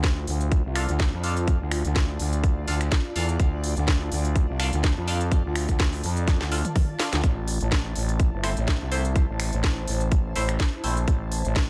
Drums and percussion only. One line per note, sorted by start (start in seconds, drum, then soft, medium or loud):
0.03 kick loud
0.03 snare loud
0.03 closed hi-hat soft
0.27 open hi-hat loud
0.41 closed hi-hat medium
0.52 kick loud
0.52 closed hi-hat soft
0.76 finger snap medium
0.76 open hi-hat loud
0.89 closed hi-hat medium
1.00 kick loud
1.00 snare loud
1.00 closed hi-hat soft
1.24 open hi-hat loud
1.37 closed hi-hat medium
1.48 kick loud
1.48 closed hi-hat medium
1.72 finger snap medium
1.72 open hi-hat loud
1.85 closed hi-hat medium
1.95 kick loud
1.95 snare loud
1.95 closed hi-hat soft
2.19 open hi-hat loud
2.33 closed hi-hat medium
2.44 kick loud
2.44 closed hi-hat soft
2.68 open hi-hat loud
2.81 finger snap medium
2.81 closed hi-hat medium
2.92 kick loud
2.92 snare loud
2.92 closed hi-hat soft
3.16 open hi-hat loud
3.29 closed hi-hat medium
3.40 kick loud
3.40 closed hi-hat medium
3.64 open hi-hat loud
3.77 closed hi-hat medium
3.88 kick loud
3.88 snare loud
3.88 closed hi-hat medium
4.12 open hi-hat medium
4.25 closed hi-hat medium
4.36 kick loud
4.36 closed hi-hat medium
4.60 finger snap medium
4.60 open hi-hat medium
4.73 closed hi-hat medium
4.84 kick loud
4.84 snare loud
4.84 closed hi-hat medium
5.08 open hi-hat loud
5.21 closed hi-hat medium
5.32 kick loud
5.32 closed hi-hat medium
5.56 finger snap medium
5.56 open hi-hat loud
5.69 kick medium
5.69 closed hi-hat medium
5.79 kick loud
5.79 snare loud
5.79 closed hi-hat medium
5.93 open hi-hat medium
6.04 open hi-hat loud
6.17 closed hi-hat medium
6.28 kick loud
6.28 snare medium
6.28 closed hi-hat medium
6.41 snare medium
6.52 open hi-hat loud
6.65 closed hi-hat medium
6.65 mid tom medium
6.76 kick loud
6.76 open hi-hat medium
6.76 mid tom medium
6.99 snare medium
6.99 open hi-hat loud
7.13 snare medium
7.13 closed hi-hat medium
7.24 kick loud
7.24 closed hi-hat medium
7.48 open hi-hat loud
7.61 closed hi-hat medium
7.72 kick loud
7.72 snare loud
7.72 closed hi-hat medium
7.96 open hi-hat loud
8.09 closed hi-hat medium
8.20 kick loud
8.20 closed hi-hat medium
8.44 finger snap medium
8.44 open hi-hat loud
8.57 closed hi-hat medium
8.68 kick loud
8.68 snare loud
8.68 closed hi-hat medium
8.92 open hi-hat loud
9.05 closed hi-hat medium
9.16 kick loud
9.16 closed hi-hat medium
9.40 finger snap medium
9.40 open hi-hat loud
9.53 closed hi-hat medium
9.64 kick loud
9.64 snare loud
9.64 closed hi-hat medium
9.88 open hi-hat loud
10.01 closed hi-hat medium
10.11 kick loud
10.11 closed hi-hat medium
10.36 open hi-hat loud
10.49 finger snap medium
10.49 closed hi-hat medium
10.60 kick loud
10.60 snare loud
10.60 closed hi-hat medium
10.84 open hi-hat loud
10.97 closed hi-hat medium
11.08 kick loud
11.08 closed hi-hat medium
11.32 open hi-hat loud
11.45 closed hi-hat medium
11.56 kick loud
11.56 snare loud
11.56 closed hi-hat soft